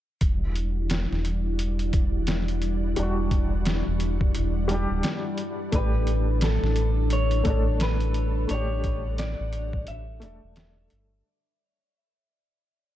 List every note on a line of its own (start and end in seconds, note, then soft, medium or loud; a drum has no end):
0.21 1.07 E1 medium
0.21 11.22 G3 medium
0.21 8.46 E4 medium
0.21 5.70 D5 medium
0.21 5.70 F#5 medium
0.21 kick loud
0.21 closed hi-hat medium
0.56 closed hi-hat medium
0.90 snare loud
0.90 closed hi-hat medium
1.12 1.92 E1 medium
1.12 snare soft
1.25 closed hi-hat medium
1.59 closed hi-hat medium
1.79 closed hi-hat soft
1.93 2.95 E1 medium
1.93 kick medium
1.93 closed hi-hat medium
2.27 snare loud
2.27 closed hi-hat medium
2.48 closed hi-hat soft
2.62 closed hi-hat medium
2.96 3.84 E1 medium
2.96 4.66 G3 medium
2.96 4.68 D4 medium
2.96 closed hi-hat medium
3.03 4.69 F#4 medium
3.31 kick medium
3.31 closed hi-hat medium
3.65 snare loud
3.65 closed hi-hat medium
3.88 4.33 E1 medium
4.00 closed hi-hat medium
4.21 kick medium
4.35 4.87 E1 medium
4.35 closed hi-hat medium
4.68 5.69 G3 medium
4.68 5.71 D4 medium
4.68 closed hi-hat medium
4.74 5.72 G4 medium
4.90 5.03 D1 medium
5.03 snare loud
5.03 closed hi-hat medium
5.38 closed hi-hat medium
5.72 6.59 A1 medium
5.72 7.42 A3 medium
5.72 11.21 D4 medium
5.72 7.43 D4 medium
5.72 11.21 A4 medium
5.72 6.46 B4 medium
5.72 kick loud
5.72 closed hi-hat medium
5.78 7.45 G4 medium
6.07 closed hi-hat medium
6.41 7.14 A4 medium
6.41 snare loud
6.41 closed hi-hat medium
6.63 7.43 A1 medium
6.63 snare soft
6.76 closed hi-hat medium
7.10 7.82 C#5 medium
7.10 closed hi-hat medium
7.31 closed hi-hat soft
7.44 8.47 A1 medium
7.44 8.45 A3 medium
7.44 8.46 D4 medium
7.44 kick medium
7.44 closed hi-hat medium
7.50 8.48 A4 medium
7.80 8.50 B4 medium
7.80 snare loud
7.80 closed hi-hat medium
8.00 closed hi-hat soft
8.14 closed hi-hat medium
8.48 9.36 A1 medium
8.48 10.18 A3 medium
8.48 10.19 D4 medium
8.48 9.18 C#5 loud
8.48 11.23 F#5 medium
8.48 closed hi-hat medium
8.54 10.21 G4 medium
8.84 kick medium
8.84 closed hi-hat medium
9.18 9.88 D5 medium
9.18 snare loud
9.18 closed hi-hat medium
9.40 9.85 A1 medium
9.53 closed hi-hat medium
9.73 kick medium
9.87 10.25 A1 medium
9.87 10.87 E5 medium
9.87 closed hi-hat medium
10.20 10.41 E1 medium
10.20 11.21 A3 medium
10.20 11.23 D4 medium
10.20 closed hi-hat medium
10.26 11.24 A4 medium
10.44 10.89 E1 medium
10.56 snare loud
10.56 closed hi-hat medium
10.90 11.23 G1 medium
10.90 closed hi-hat medium